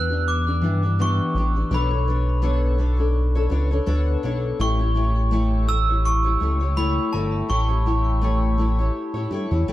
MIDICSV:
0, 0, Header, 1, 4, 480
1, 0, Start_track
1, 0, Tempo, 722892
1, 1139, Time_signature, 4, 2, 24, 8
1, 6459, End_track
2, 0, Start_track
2, 0, Title_t, "Glockenspiel"
2, 0, Program_c, 0, 9
2, 0, Note_on_c, 0, 90, 94
2, 185, Note_on_c, 0, 86, 85
2, 192, Note_off_c, 0, 90, 0
2, 636, Note_off_c, 0, 86, 0
2, 675, Note_on_c, 0, 85, 81
2, 1157, Note_on_c, 0, 83, 72
2, 1161, Note_off_c, 0, 85, 0
2, 2082, Note_off_c, 0, 83, 0
2, 3062, Note_on_c, 0, 85, 86
2, 3775, Note_on_c, 0, 88, 99
2, 3803, Note_off_c, 0, 85, 0
2, 4020, Note_on_c, 0, 85, 89
2, 4025, Note_off_c, 0, 88, 0
2, 4474, Note_off_c, 0, 85, 0
2, 4496, Note_on_c, 0, 83, 85
2, 4732, Note_on_c, 0, 81, 75
2, 4746, Note_off_c, 0, 83, 0
2, 4978, Note_on_c, 0, 85, 82
2, 4984, Note_off_c, 0, 81, 0
2, 6392, Note_off_c, 0, 85, 0
2, 6459, End_track
3, 0, Start_track
3, 0, Title_t, "Steel-string acoustic guitar"
3, 0, Program_c, 1, 25
3, 0, Note_on_c, 1, 52, 58
3, 0, Note_on_c, 1, 59, 46
3, 0, Note_on_c, 1, 62, 52
3, 67, Note_on_c, 1, 67, 42
3, 70, Note_off_c, 1, 62, 0
3, 73, Note_off_c, 1, 52, 0
3, 78, Note_off_c, 1, 59, 0
3, 78, Note_on_c, 1, 62, 47
3, 88, Note_on_c, 1, 59, 38
3, 305, Note_off_c, 1, 67, 0
3, 310, Note_off_c, 1, 62, 0
3, 313, Note_on_c, 1, 67, 51
3, 318, Note_on_c, 1, 62, 52
3, 319, Note_off_c, 1, 59, 0
3, 326, Note_on_c, 1, 59, 41
3, 408, Note_on_c, 1, 52, 66
3, 411, Note_off_c, 1, 59, 0
3, 414, Note_off_c, 1, 62, 0
3, 419, Note_on_c, 1, 59, 57
3, 420, Note_off_c, 1, 67, 0
3, 422, Note_on_c, 1, 62, 64
3, 428, Note_on_c, 1, 67, 63
3, 543, Note_off_c, 1, 67, 0
3, 546, Note_off_c, 1, 52, 0
3, 551, Note_off_c, 1, 59, 0
3, 551, Note_on_c, 1, 67, 54
3, 552, Note_off_c, 1, 62, 0
3, 560, Note_on_c, 1, 62, 45
3, 570, Note_on_c, 1, 59, 41
3, 654, Note_off_c, 1, 59, 0
3, 656, Note_off_c, 1, 62, 0
3, 657, Note_on_c, 1, 52, 74
3, 659, Note_off_c, 1, 67, 0
3, 662, Note_on_c, 1, 59, 71
3, 664, Note_on_c, 1, 62, 81
3, 668, Note_on_c, 1, 67, 81
3, 892, Note_off_c, 1, 52, 0
3, 900, Note_on_c, 1, 52, 50
3, 901, Note_off_c, 1, 59, 0
3, 902, Note_off_c, 1, 62, 0
3, 904, Note_off_c, 1, 67, 0
3, 909, Note_on_c, 1, 59, 60
3, 914, Note_on_c, 1, 62, 63
3, 918, Note_on_c, 1, 67, 59
3, 1019, Note_off_c, 1, 67, 0
3, 1027, Note_on_c, 1, 67, 41
3, 1029, Note_off_c, 1, 62, 0
3, 1031, Note_off_c, 1, 52, 0
3, 1036, Note_off_c, 1, 59, 0
3, 1037, Note_on_c, 1, 62, 40
3, 1044, Note_on_c, 1, 59, 35
3, 1126, Note_off_c, 1, 59, 0
3, 1129, Note_off_c, 1, 62, 0
3, 1134, Note_on_c, 1, 59, 76
3, 1137, Note_off_c, 1, 67, 0
3, 1137, Note_on_c, 1, 62, 82
3, 1145, Note_on_c, 1, 69, 91
3, 1145, Note_on_c, 1, 73, 82
3, 1257, Note_off_c, 1, 73, 0
3, 1264, Note_off_c, 1, 69, 0
3, 1265, Note_on_c, 1, 73, 53
3, 1269, Note_off_c, 1, 59, 0
3, 1270, Note_off_c, 1, 62, 0
3, 1272, Note_on_c, 1, 69, 43
3, 1283, Note_on_c, 1, 62, 39
3, 1374, Note_off_c, 1, 62, 0
3, 1376, Note_off_c, 1, 73, 0
3, 1378, Note_on_c, 1, 59, 53
3, 1380, Note_off_c, 1, 69, 0
3, 1382, Note_on_c, 1, 62, 55
3, 1390, Note_on_c, 1, 69, 55
3, 1394, Note_on_c, 1, 73, 61
3, 1598, Note_off_c, 1, 59, 0
3, 1602, Note_off_c, 1, 62, 0
3, 1604, Note_off_c, 1, 69, 0
3, 1606, Note_on_c, 1, 59, 81
3, 1609, Note_off_c, 1, 73, 0
3, 1610, Note_on_c, 1, 62, 84
3, 1612, Note_on_c, 1, 69, 82
3, 1617, Note_on_c, 1, 73, 91
3, 1840, Note_off_c, 1, 59, 0
3, 1846, Note_off_c, 1, 62, 0
3, 1848, Note_on_c, 1, 59, 56
3, 1850, Note_off_c, 1, 69, 0
3, 1854, Note_on_c, 1, 62, 61
3, 1856, Note_off_c, 1, 73, 0
3, 1858, Note_on_c, 1, 69, 61
3, 1864, Note_on_c, 1, 73, 69
3, 1965, Note_off_c, 1, 73, 0
3, 1973, Note_on_c, 1, 73, 53
3, 1976, Note_off_c, 1, 69, 0
3, 1983, Note_off_c, 1, 62, 0
3, 1984, Note_on_c, 1, 69, 47
3, 1986, Note_off_c, 1, 59, 0
3, 1991, Note_on_c, 1, 62, 47
3, 2218, Note_off_c, 1, 73, 0
3, 2226, Note_off_c, 1, 69, 0
3, 2226, Note_on_c, 1, 73, 60
3, 2231, Note_off_c, 1, 62, 0
3, 2234, Note_on_c, 1, 69, 54
3, 2243, Note_on_c, 1, 62, 50
3, 2322, Note_on_c, 1, 59, 64
3, 2324, Note_off_c, 1, 62, 0
3, 2326, Note_off_c, 1, 69, 0
3, 2329, Note_off_c, 1, 73, 0
3, 2332, Note_on_c, 1, 62, 65
3, 2334, Note_on_c, 1, 69, 66
3, 2337, Note_on_c, 1, 73, 78
3, 2455, Note_off_c, 1, 73, 0
3, 2463, Note_off_c, 1, 59, 0
3, 2463, Note_off_c, 1, 69, 0
3, 2463, Note_on_c, 1, 73, 53
3, 2468, Note_off_c, 1, 62, 0
3, 2471, Note_on_c, 1, 69, 58
3, 2477, Note_on_c, 1, 62, 49
3, 2561, Note_off_c, 1, 62, 0
3, 2565, Note_off_c, 1, 73, 0
3, 2565, Note_on_c, 1, 59, 85
3, 2567, Note_off_c, 1, 69, 0
3, 2569, Note_on_c, 1, 62, 87
3, 2573, Note_on_c, 1, 73, 100
3, 2575, Note_on_c, 1, 69, 77
3, 2801, Note_off_c, 1, 59, 0
3, 2803, Note_off_c, 1, 62, 0
3, 2809, Note_off_c, 1, 69, 0
3, 2809, Note_on_c, 1, 59, 60
3, 2811, Note_on_c, 1, 62, 67
3, 2815, Note_off_c, 1, 73, 0
3, 2817, Note_on_c, 1, 69, 74
3, 2823, Note_on_c, 1, 73, 75
3, 3048, Note_off_c, 1, 59, 0
3, 3051, Note_on_c, 1, 57, 83
3, 3052, Note_off_c, 1, 62, 0
3, 3053, Note_off_c, 1, 73, 0
3, 3055, Note_on_c, 1, 64, 79
3, 3058, Note_off_c, 1, 69, 0
3, 3060, Note_on_c, 1, 67, 92
3, 3061, Note_on_c, 1, 73, 82
3, 3170, Note_off_c, 1, 73, 0
3, 3178, Note_on_c, 1, 73, 51
3, 3182, Note_off_c, 1, 67, 0
3, 3187, Note_off_c, 1, 64, 0
3, 3188, Note_off_c, 1, 57, 0
3, 3190, Note_on_c, 1, 67, 50
3, 3195, Note_on_c, 1, 64, 39
3, 3284, Note_off_c, 1, 64, 0
3, 3284, Note_on_c, 1, 57, 53
3, 3289, Note_off_c, 1, 67, 0
3, 3292, Note_on_c, 1, 64, 64
3, 3293, Note_off_c, 1, 73, 0
3, 3297, Note_on_c, 1, 67, 64
3, 3301, Note_on_c, 1, 73, 69
3, 3519, Note_off_c, 1, 57, 0
3, 3527, Note_off_c, 1, 64, 0
3, 3527, Note_on_c, 1, 57, 72
3, 3530, Note_off_c, 1, 67, 0
3, 3534, Note_off_c, 1, 73, 0
3, 3535, Note_on_c, 1, 64, 83
3, 3538, Note_on_c, 1, 67, 80
3, 3542, Note_on_c, 1, 73, 89
3, 3762, Note_off_c, 1, 57, 0
3, 3770, Note_off_c, 1, 64, 0
3, 3770, Note_on_c, 1, 57, 57
3, 3773, Note_off_c, 1, 67, 0
3, 3777, Note_off_c, 1, 73, 0
3, 3778, Note_on_c, 1, 64, 55
3, 3781, Note_on_c, 1, 67, 50
3, 3785, Note_on_c, 1, 73, 55
3, 3902, Note_off_c, 1, 73, 0
3, 3907, Note_off_c, 1, 57, 0
3, 3910, Note_on_c, 1, 73, 45
3, 3911, Note_off_c, 1, 64, 0
3, 3913, Note_off_c, 1, 67, 0
3, 3921, Note_on_c, 1, 67, 39
3, 3927, Note_on_c, 1, 64, 39
3, 4138, Note_off_c, 1, 73, 0
3, 4146, Note_on_c, 1, 73, 51
3, 4147, Note_off_c, 1, 67, 0
3, 4155, Note_on_c, 1, 67, 50
3, 4158, Note_off_c, 1, 64, 0
3, 4165, Note_on_c, 1, 64, 44
3, 4251, Note_on_c, 1, 57, 56
3, 4254, Note_off_c, 1, 64, 0
3, 4257, Note_off_c, 1, 73, 0
3, 4260, Note_off_c, 1, 67, 0
3, 4262, Note_on_c, 1, 64, 66
3, 4268, Note_on_c, 1, 67, 61
3, 4270, Note_on_c, 1, 73, 62
3, 4378, Note_off_c, 1, 73, 0
3, 4386, Note_on_c, 1, 73, 50
3, 4388, Note_off_c, 1, 57, 0
3, 4390, Note_off_c, 1, 67, 0
3, 4393, Note_off_c, 1, 64, 0
3, 4398, Note_on_c, 1, 67, 47
3, 4403, Note_on_c, 1, 64, 43
3, 4488, Note_off_c, 1, 64, 0
3, 4491, Note_off_c, 1, 67, 0
3, 4491, Note_on_c, 1, 57, 75
3, 4496, Note_on_c, 1, 64, 77
3, 4497, Note_off_c, 1, 73, 0
3, 4499, Note_on_c, 1, 67, 82
3, 4505, Note_on_c, 1, 73, 80
3, 4727, Note_off_c, 1, 57, 0
3, 4732, Note_off_c, 1, 64, 0
3, 4735, Note_on_c, 1, 57, 67
3, 4737, Note_off_c, 1, 67, 0
3, 4740, Note_on_c, 1, 64, 61
3, 4743, Note_off_c, 1, 73, 0
3, 4745, Note_on_c, 1, 67, 64
3, 4750, Note_on_c, 1, 73, 60
3, 4963, Note_off_c, 1, 57, 0
3, 4970, Note_off_c, 1, 64, 0
3, 4971, Note_on_c, 1, 57, 77
3, 4973, Note_off_c, 1, 67, 0
3, 4975, Note_off_c, 1, 73, 0
3, 4978, Note_on_c, 1, 64, 84
3, 4981, Note_on_c, 1, 67, 82
3, 4983, Note_on_c, 1, 73, 96
3, 5095, Note_off_c, 1, 73, 0
3, 5103, Note_on_c, 1, 73, 50
3, 5108, Note_off_c, 1, 57, 0
3, 5108, Note_off_c, 1, 67, 0
3, 5111, Note_off_c, 1, 64, 0
3, 5116, Note_on_c, 1, 67, 43
3, 5123, Note_on_c, 1, 64, 42
3, 5216, Note_off_c, 1, 64, 0
3, 5216, Note_off_c, 1, 73, 0
3, 5218, Note_on_c, 1, 57, 54
3, 5221, Note_off_c, 1, 67, 0
3, 5224, Note_on_c, 1, 64, 59
3, 5229, Note_on_c, 1, 67, 67
3, 5234, Note_on_c, 1, 73, 63
3, 5447, Note_off_c, 1, 57, 0
3, 5454, Note_off_c, 1, 64, 0
3, 5454, Note_on_c, 1, 57, 76
3, 5457, Note_off_c, 1, 67, 0
3, 5462, Note_on_c, 1, 64, 68
3, 5464, Note_off_c, 1, 73, 0
3, 5465, Note_on_c, 1, 67, 80
3, 5472, Note_on_c, 1, 73, 84
3, 5689, Note_off_c, 1, 57, 0
3, 5697, Note_on_c, 1, 57, 57
3, 5699, Note_off_c, 1, 64, 0
3, 5703, Note_off_c, 1, 67, 0
3, 5706, Note_off_c, 1, 73, 0
3, 5707, Note_on_c, 1, 64, 64
3, 5711, Note_on_c, 1, 67, 61
3, 5719, Note_on_c, 1, 73, 64
3, 5826, Note_off_c, 1, 73, 0
3, 5831, Note_off_c, 1, 57, 0
3, 5834, Note_on_c, 1, 73, 55
3, 5836, Note_off_c, 1, 64, 0
3, 5838, Note_off_c, 1, 67, 0
3, 5845, Note_on_c, 1, 67, 47
3, 5851, Note_on_c, 1, 64, 42
3, 6061, Note_off_c, 1, 73, 0
3, 6069, Note_off_c, 1, 67, 0
3, 6069, Note_on_c, 1, 73, 56
3, 6077, Note_on_c, 1, 67, 49
3, 6078, Note_off_c, 1, 64, 0
3, 6086, Note_on_c, 1, 64, 46
3, 6178, Note_off_c, 1, 73, 0
3, 6180, Note_on_c, 1, 57, 65
3, 6181, Note_off_c, 1, 64, 0
3, 6183, Note_off_c, 1, 67, 0
3, 6189, Note_on_c, 1, 64, 59
3, 6193, Note_on_c, 1, 67, 68
3, 6203, Note_on_c, 1, 73, 72
3, 6307, Note_off_c, 1, 73, 0
3, 6312, Note_off_c, 1, 57, 0
3, 6313, Note_off_c, 1, 67, 0
3, 6315, Note_on_c, 1, 73, 55
3, 6316, Note_off_c, 1, 64, 0
3, 6321, Note_on_c, 1, 67, 49
3, 6333, Note_on_c, 1, 64, 47
3, 6421, Note_off_c, 1, 64, 0
3, 6421, Note_off_c, 1, 73, 0
3, 6424, Note_off_c, 1, 67, 0
3, 6428, Note_on_c, 1, 57, 80
3, 6429, Note_on_c, 1, 64, 90
3, 6433, Note_on_c, 1, 67, 79
3, 6437, Note_on_c, 1, 73, 95
3, 6459, Note_off_c, 1, 57, 0
3, 6459, Note_off_c, 1, 64, 0
3, 6459, Note_off_c, 1, 67, 0
3, 6459, Note_off_c, 1, 73, 0
3, 6459, End_track
4, 0, Start_track
4, 0, Title_t, "Analog synth bass"
4, 0, Program_c, 2, 38
4, 0, Note_on_c, 2, 40, 106
4, 414, Note_on_c, 2, 43, 95
4, 424, Note_off_c, 2, 40, 0
4, 800, Note_off_c, 2, 43, 0
4, 894, Note_on_c, 2, 33, 96
4, 1088, Note_off_c, 2, 33, 0
4, 1133, Note_on_c, 2, 35, 114
4, 2310, Note_off_c, 2, 35, 0
4, 2332, Note_on_c, 2, 37, 94
4, 2527, Note_off_c, 2, 37, 0
4, 2573, Note_on_c, 2, 38, 79
4, 2768, Note_off_c, 2, 38, 0
4, 2814, Note_on_c, 2, 35, 92
4, 3008, Note_off_c, 2, 35, 0
4, 3052, Note_on_c, 2, 33, 117
4, 4230, Note_off_c, 2, 33, 0
4, 4259, Note_on_c, 2, 37, 81
4, 4644, Note_off_c, 2, 37, 0
4, 4740, Note_on_c, 2, 31, 90
4, 4932, Note_off_c, 2, 31, 0
4, 4979, Note_on_c, 2, 33, 102
4, 5913, Note_off_c, 2, 33, 0
4, 6068, Note_on_c, 2, 45, 99
4, 6156, Note_off_c, 2, 45, 0
4, 6181, Note_on_c, 2, 43, 90
4, 6286, Note_off_c, 2, 43, 0
4, 6318, Note_on_c, 2, 40, 92
4, 6402, Note_off_c, 2, 40, 0
4, 6416, Note_on_c, 2, 33, 44
4, 6459, Note_off_c, 2, 33, 0
4, 6459, End_track
0, 0, End_of_file